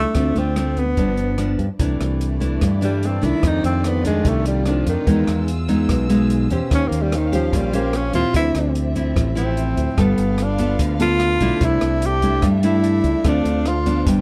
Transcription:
Already playing: nylon-string guitar G3 A3 D4 E4, tenor saxophone A3
0.15 fingered electric bass D2, nylon-string guitar D3 A3 C4 F4, kick, cross-stick, closed hi-hat
0.36 fingered electric bass D2, nylon-string guitar A3 C4 F4, tenor saxophone C4, closed hi-hat
0.56 nylon-string guitar A3 C4 F4, cross-stick, closed hi-hat
0.77 tenor saxophone B3, kick, closed hi-hat
0.97 fingered electric bass G1, nylon-string guitar G2 F3 B3 D4, kick, closed hi-hat
1.17 closed hi-hat
1.38 nylon-string guitar F3 B3 D4, cross-stick, closed hi-hat
1.59 fingered electric bass G2, kick, closed hi-hat
1.79 fingered electric bass C2, nylon-string guitar C3 E3 A3 D4, violin section A3 E4 D5, kick, closed hi-hat
2.00 fingered electric bass C2, cross-stick, closed hi-hat
2.21 closed hi-hat
2.40 nylon-string guitar E3 A3 D4, kick, closed hi-hat
2.61 nylon-string guitar G2, fingered electric bass G2, kick, cross-stick, closed hi-hat
2.81 nylon-string guitar E3 A3 D4, tenor saxophone G3, closed hi-hat
3.03 tenor saxophone C4, closed hi-hat
3.22 fingered electric bass C2, nylon-string guitar D#3 A3 D4, tenor saxophone E4, kick, closed hi-hat
3.42 nylon-string guitar F2, fingered electric bass F2, violin section F4 G4, kick, cross-stick, closed hi-hat
3.47 tenor saxophone D#4
3.64 fingered electric bass F2, tenor saxophone C4, closed hi-hat
3.84 tenor saxophone B3, cross-stick, closed hi-hat
4.04 nylon-string guitar D#3 A3 D4, tenor saxophone G#3, kick, closed hi-hat
4.25 fingered electric bass C2, nylon-string guitar C3, kick, closed hi-hat
4.29 tenor saxophone A3
4.45 tenor saxophone G3, closed hi-hat
4.66 nylon-string guitar D#3 A3 D4, cross-stick, closed hi-hat
4.71 tenor saxophone F3
4.86 fingered electric bass F2, tenor saxophone D#3, kick, closed hi-hat
5.05 fingered electric bass E2, nylon-string guitar G#3 B3 D#4, violin section G#4 E6, kick, closed hi-hat
5.27 fingered electric bass E2, cross-stick, closed hi-hat
5.48 closed hi-hat
5.68 nylon-string guitar G#3 B3 D#4, kick, closed hi-hat
5.89 fingered electric bass B1, nylon-string guitar B2, kick, cross-stick, closed hi-hat
6.09 nylon-string guitar G#3 B3 D#4, closed hi-hat
6.30 closed hi-hat
6.50 fingered electric bass E2, nylon-string guitar C#4 G4 C5, kick, closed hi-hat
6.70 fingered electric bass D#2, nylon-string guitar D#3, violin section C#4 G4 C5 F5, kick, cross-stick, closed hi-hat
6.75 tenor saxophone C#4
6.88 fingered electric bass D#2, tenor saxophone A#3
6.92 closed hi-hat
7.02 tenor saxophone G3
7.12 tenor saxophone D#3, cross-stick, closed hi-hat
7.32 tenor saxophone F3, nylon-string guitar C#4 G4 C5, kick, closed hi-hat
7.53 fingered electric bass A#1, nylon-string guitar A#2, tenor saxophone G3, kick, closed hi-hat
7.73 tenor saxophone A#3, nylon-string guitar C#4 G4 C5, closed hi-hat
7.93 tenor saxophone C#4, cross-stick, closed hi-hat
8.13 fingered electric bass D#2, nylon-string guitar F3 C4 E4, tenor saxophone F4, kick, closed hi-hat
8.33 fingered electric bass D2, nylon-string guitar D3, violin section C4 E5, tenor saxophone E4, kick, closed hi-hat
8.55 fingered electric bass D2, cross-stick, closed hi-hat
8.75 closed hi-hat
8.95 nylon-string guitar F3 C4 E4, kick, closed hi-hat
9.16 fingered electric bass A1, nylon-string guitar A2, kick, cross-stick, closed hi-hat
9.35 nylon-string guitar F3 C4 E4, tenor saxophone C4, closed hi-hat
9.57 closed hi-hat
9.77 fingered electric bass D2, kick, closed hi-hat
9.97 fingered electric bass G1, nylon-string guitar G3 B3 F4 A4, violin section B3 A4 F5, kick, cross-stick, closed hi-hat
10.02 tenor saxophone B3
10.18 fingered electric bass G1, closed hi-hat
10.38 cross-stick, closed hi-hat
10.43 tenor saxophone D4
10.58 nylon-string guitar B3 F4 A4, kick, closed hi-hat
10.79 fingered electric bass D2, nylon-string guitar D3, kick, closed hi-hat
11.00 nylon-string guitar B3 F4 A4, tenor saxophone F4, closed hi-hat
11.20 cross-stick, closed hi-hat
11.40 fingered electric bass B1, nylon-string guitar A3 D4 E4, kick, closed hi-hat
11.61 fingered electric bass C2, nylon-string guitar C3, violin section D4 E5, kick, closed hi-hat
11.65 tenor saxophone E4
11.81 fingered electric bass C2, cross-stick, closed hi-hat
12.02 tenor saxophone G4, closed hi-hat
12.22 nylon-string guitar A3 D4 E4, kick, closed hi-hat
12.42 fingered electric bass G2, nylon-string guitar G3, kick, cross-stick, closed hi-hat
12.63 nylon-string guitar A3 D4 E4, tenor saxophone E4, closed hi-hat
12.84 closed hi-hat
13.04 fingered electric bass C#2, kick, closed hi-hat
13.24 fingered electric bass D2, nylon-string guitar D3 A3 C4 F4, violin section C5 F5, kick, cross-stick, closed hi-hat
13.28 tenor saxophone D4
13.45 fingered electric bass D2, closed hi-hat
13.66 tenor saxophone F4, cross-stick, closed hi-hat
13.86 nylon-string guitar F3 B3 D4, kick, closed hi-hat
14.05 fingered electric bass G1, nylon-string guitar G2, violin section F4 B4 G5, kick, closed hi-hat

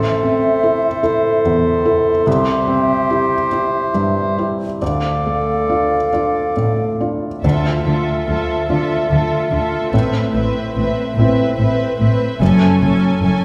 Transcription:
Already playing: felt piano A1, clarinet A4, cor anglais C5, flute E5
0.23 felt piano C4
0.63 felt piano E4 A4
1.03 felt piano E4 A4
1.45 felt piano E2
1.85 felt piano E4 A4
2.26 felt piano C2, clarinet G4, cor anglais C5, flute E5
2.68 felt piano C4
3.10 felt piano E4 G4
3.52 felt piano E4 G4
3.95 felt piano G2
4.38 felt piano E4 G4
4.81 felt piano D2, clarinet A4, cor anglais D5, flute F5
5.26 felt piano A3
5.69 felt piano D4 F4
6.13 felt piano D4 F4
6.57 felt piano A2
7.01 felt piano D4 F4
7.43 double bass section D2, felt piano D2, cello section D3, viola section F4, violin section A4 E5
7.84 double bass section D2, cello section D3, viola section F4, violin section A4 E5
8.27 double bass section D2, cello section D3, viola section F4, violin section A4 E5
8.69 double bass section D2, cello section D3, felt piano D4 F4, viola section F4, violin section A4 E5
9.09 double bass section D2, cello section D3, viola section F4, violin section A4 E5
9.51 double bass section D2, cello section D3, viola section F4, violin section A4 E5
9.92 double bass section A1, cello section A2, felt piano A2, viola section C4, violin section B4 E5
10.34 double bass section A1, cello section A2, viola section C4, violin section B4 E5
10.76 double bass section A1, cello section A2, viola section C4, violin section B4 E5
11.17 double bass section A1, cello section A2, viola section C4, felt piano C4 E4, violin section B4 E5
11.58 double bass section A1, cello section A2, viola section C4, violin section B4 E5
12.00 double bass section A1, cello section A2, viola section C4, violin section B4 E5
12.41 double bass section F#1, cello section F#2, felt piano F#2, viola section C#4, violin section A4 G#5
12.82 double bass section F#1, cello section F#2, viola section C#4, violin section A4 G#5
13.22 double bass section F#1, cello section F#2, viola section C#4, violin section A4 G#5

